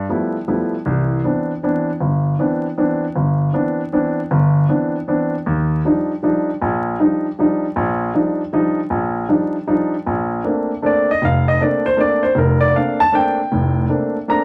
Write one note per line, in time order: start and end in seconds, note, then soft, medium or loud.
0.09 0.35 F3 soft
0.09 0.36 G3 soft
0.09 0.36 A3 soft
0.09 0.36 B3 soft
0.09 0.36 E4 soft
0.48 0.74 F3 soft
0.48 0.74 G3 soft
0.48 0.74 A3 soft
0.48 0.74 B3 soft
0.48 0.74 E4 medium
0.85 1.19 C2 medium
0.85 1.19 E3 medium
1.24 1.50 E3 soft
1.24 1.50 B3 soft
1.24 1.51 C4 soft
1.24 1.51 D4 soft
1.63 1.89 E3 medium
1.63 1.89 B3 soft
1.63 1.89 C4 soft
1.63 1.89 D4 medium
2.00 2.34 G1 medium
2.39 2.65 E3 soft
2.39 2.65 B3 soft
2.39 2.65 C4 soft
2.39 2.66 D4 soft
2.78 3.04 E3 medium
2.78 3.04 B3 soft
2.78 3.04 C4 soft
2.78 3.04 D4 medium
3.16 3.49 G1 medium
3.53 3.80 E3 soft
3.53 3.80 B3 soft
3.53 3.80 C4 soft
3.53 3.80 D4 medium
3.93 4.19 E3 medium
3.93 4.19 B3 soft
3.93 4.19 C4 soft
3.93 4.19 D4 medium
4.31 4.64 G1 medium
4.69 4.95 E3 soft
4.69 4.95 B3 soft
4.69 4.95 C4 soft
4.69 4.95 D4 soft
5.08 5.34 E3 soft
5.08 5.34 B3 soft
5.08 5.34 C4 soft
5.08 5.34 D4 medium
5.46 5.79 D#2 medium
5.85 6.11 F3 soft
5.85 6.11 G3 soft
5.85 6.11 D4 soft
5.85 6.11 D#4 medium
6.23 6.49 F3 soft
6.23 6.49 G3 soft
6.23 6.49 D4 soft
6.23 6.49 D#4 medium
6.61 6.94 A#1 medium
7.00 7.25 F3 soft
7.00 7.26 G3 soft
7.00 7.26 D4 soft
7.00 7.26 D#4 medium
7.39 7.64 F3 medium
7.39 7.64 G3 soft
7.39 7.65 D4 soft
7.39 7.65 D#4 medium
7.76 8.09 A#1 medium
8.14 8.40 F3 soft
8.14 8.40 G3 soft
8.14 8.41 D4 soft
8.14 8.41 D#4 soft
8.53 8.79 F3 medium
8.53 8.79 G3 soft
8.53 8.79 D4 soft
8.53 8.79 D#4 medium
8.90 9.24 A#1 medium
9.29 9.55 F3 medium
9.29 9.55 G3 soft
9.29 9.55 D4 soft
9.29 9.55 D#4 medium
9.67 9.94 F3 medium
9.67 9.94 G3 soft
9.67 9.94 D4 soft
9.67 9.94 D#4 medium
10.06 10.39 A#1 medium
10.44 10.70 A3 soft
10.44 10.70 A#3 soft
10.44 10.71 C4 soft
10.44 10.71 D4 soft
10.82 11.09 A3 medium
10.82 11.09 A#3 soft
10.82 11.09 C4 soft
10.82 11.09 D4 soft
10.82 11.09 D5 medium
11.11 11.22 D#5 medium
11.22 11.55 F1 medium
11.22 11.47 F5 medium
11.48 11.60 D#5 medium
11.60 11.86 A3 soft
11.60 11.86 A#3 soft
11.60 11.86 C4 soft
11.60 11.87 D4 medium
11.60 11.85 D5 medium
11.86 11.98 C5 medium
11.96 12.23 A3 soft
11.96 12.24 A#3 soft
11.96 12.24 C4 soft
11.96 12.24 D4 medium
12.00 12.23 D5 medium
12.23 12.36 C5 medium
12.35 12.69 F1 medium
12.35 12.61 A#4 medium
12.61 12.74 D5 medium
12.74 13.00 A3 soft
12.74 13.00 A#3 soft
12.74 13.01 C4 soft
12.74 13.01 D4 medium
12.74 12.99 F5 medium
13.00 13.13 A5 loud
13.12 13.39 A3 soft
13.12 13.39 A#3 soft
13.12 13.39 C4 soft
13.12 13.39 D4 medium
13.12 13.87 G5 medium
13.52 13.85 F1 medium
13.52 13.85 A2 medium
13.89 14.16 A3 soft
13.89 14.16 A#3 soft
13.89 14.16 C4 soft
13.89 14.16 D4 soft
14.28 14.44 A3 soft
14.28 14.44 A#3 soft
14.28 14.44 C4 soft
14.28 14.44 D4 medium
14.28 14.44 A#5 medium